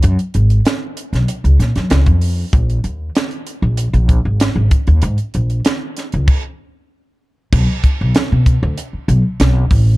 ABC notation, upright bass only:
X:1
M:4/4
L:1/16
Q:1/4=96
K:Ebm
V:1 name="Upright bass" clef=bass
G,, z A,,,2 z3 C,, z D,, B,, G,, D,, F,,3 | B,,,2 E,,2 z3 B,,,2 B,,,2 A,,,2 A,,, z E,, | A,, z B,,,2 z3 D,, z8 | [K:Bm] B,,, z2 B,,, z B,,2 D,, z2 B,,, z B,,,2 A,,,2 |]